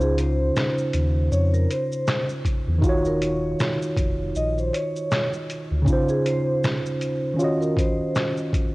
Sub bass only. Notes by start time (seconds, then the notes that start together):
Already playing: C#2
0.94 D#2
1.31 F2
2.67 E2
2.83 D#1
3.97 F1
4.36 A#1
5.71 D2